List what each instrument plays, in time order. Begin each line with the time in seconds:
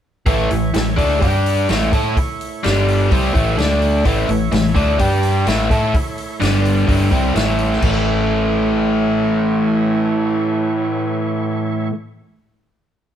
0.26 fingered electric bass A1, overdriven electric guitar A2 E3 A3, tonewheel organ A3 E4 C#5, kick, open hi-hat
0.51 fingered electric bass A1, overdriven electric guitar A2 E3, open hi-hat
0.74 fingered electric bass A1, overdriven electric guitar A2 E3, snare, open hi-hat
0.96 fingered electric bass D2, overdriven electric guitar D3 A3 D4, kick, open hi-hat
1.21 fingered electric bass G2, overdriven electric guitar G3 D4 G4, tonewheel organ G3 D4 D5, kick, open hi-hat
1.46 open hi-hat
1.69 fingered electric bass A1, overdriven electric guitar A2 E3 A3, tonewheel organ A3 E4 C#5, snare, open hi-hat
1.93 fingered electric bass A2, overdriven electric guitar A3 E4 A4, kick, open hi-hat
2.17 kick, open hi-hat
2.41 open hi-hat
2.63 fingered electric bass G1, overdriven electric guitar G2 D3 G3, tonewheel organ G3 D4 D5, snare, open hi-hat
2.88 open hi-hat
3.11 fingered electric bass C2, overdriven electric guitar C3 G3 C4, tonewheel organ A3 E4 C#5, kick, open hi-hat
3.34 fingered electric bass A1, overdriven electric guitar A2 E3 A3, kick, open hi-hat
3.58 fingered electric bass D2, overdriven electric guitar D3 A3 D4, tonewheel organ A3 D4 D5, snare, open hi-hat
3.82 open hi-hat
4.04 fingered electric bass A1, overdriven electric guitar A2 E3 A3, tonewheel organ A3 E4 C#5, kick, open hi-hat
4.29 fingered electric bass A1, overdriven electric guitar A2 E3, open hi-hat
4.52 fingered electric bass A1, overdriven electric guitar A2 E3, snare, open hi-hat
4.75 fingered electric bass D2, overdriven electric guitar D3 A3 D4, kick, open hi-hat
4.98 fingered electric bass G2, overdriven electric guitar G3 D4 G4, tonewheel organ G3 D4 D5, kick, open hi-hat
5.23 open hi-hat
5.46 fingered electric bass A1, overdriven electric guitar A2 E3 A3, tonewheel organ A3 E4 C#5, snare, open hi-hat
5.70 fingered electric bass A2, overdriven electric guitar A3 E4 A4, kick, open hi-hat
5.94 kick, open hi-hat
6.18 open hi-hat
6.40 fingered electric bass G1, overdriven electric guitar G2 D3 G3, tonewheel organ G3 D4 D5, snare, open hi-hat
6.65 open hi-hat
6.87 fingered electric bass G1, overdriven electric guitar G2 D3 G3, tonewheel organ A3 E4 C#5, kick, open hi-hat
7.12 fingered electric bass C2, overdriven electric guitar C3 G3 C4, kick, open hi-hat
7.34 fingered electric bass A1, overdriven electric guitar A2 E3 A3, snare, open hi-hat
7.59 open hi-hat
7.73 snare
7.81 fingered electric bass A1, overdriven electric guitar A2 E3 A3, tonewheel organ A3 E4 C#5, kick, crash